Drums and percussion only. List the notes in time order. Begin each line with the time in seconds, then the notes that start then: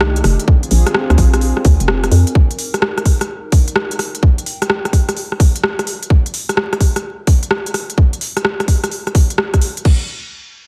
0.01 cross-stick
0.16 closed hi-hat
0.24 cross-stick, open hi-hat
0.40 closed hi-hat
0.48 kick
0.63 closed hi-hat
0.71 open hi-hat
0.86 cross-stick, closed hi-hat
0.94 cross-stick
1.10 cross-stick, closed hi-hat
1.18 kick, open hi-hat
1.34 cross-stick, closed hi-hat
1.41 open hi-hat
1.57 cross-stick
1.65 kick, open hi-hat
1.80 closed hi-hat
1.88 cross-stick
2.04 cross-stick, closed hi-hat
2.12 open hi-hat
2.27 closed hi-hat
2.35 kick
2.51 closed hi-hat
2.59 open hi-hat
2.74 cross-stick, closed hi-hat
2.82 cross-stick
2.98 cross-stick, closed hi-hat
3.05 kick, open hi-hat
3.21 cross-stick, closed hi-hat
3.52 kick, open hi-hat
3.68 closed hi-hat
3.76 cross-stick
3.91 closed hi-hat
3.99 cross-stick, open hi-hat
4.15 closed hi-hat
4.23 kick
4.38 closed hi-hat
4.46 open hi-hat
4.62 cross-stick, closed hi-hat
4.70 cross-stick
4.85 cross-stick, closed hi-hat
4.93 kick, open hi-hat
5.09 cross-stick, closed hi-hat
5.17 open hi-hat
5.32 cross-stick
5.40 kick, open hi-hat
5.56 closed hi-hat
5.64 cross-stick
5.79 cross-stick, closed hi-hat
5.87 open hi-hat
6.03 closed hi-hat
6.10 kick
6.26 closed hi-hat
6.34 open hi-hat
6.49 cross-stick, closed hi-hat
6.57 cross-stick
6.73 cross-stick, closed hi-hat
6.80 kick, open hi-hat
6.96 cross-stick, closed hi-hat
7.27 kick, open hi-hat
7.43 closed hi-hat
7.51 cross-stick
7.66 closed hi-hat
7.74 cross-stick, open hi-hat
7.90 closed hi-hat
7.98 kick
8.13 closed hi-hat
8.21 open hi-hat
8.37 cross-stick, closed hi-hat
8.45 cross-stick
8.60 cross-stick, closed hi-hat
8.68 kick, open hi-hat
8.84 cross-stick, closed hi-hat
8.91 open hi-hat
9.07 cross-stick, closed hi-hat
9.15 kick, open hi-hat
9.30 closed hi-hat
9.38 cross-stick
9.54 kick, cross-stick, closed hi-hat
9.62 open hi-hat
9.77 closed hi-hat
9.85 kick, crash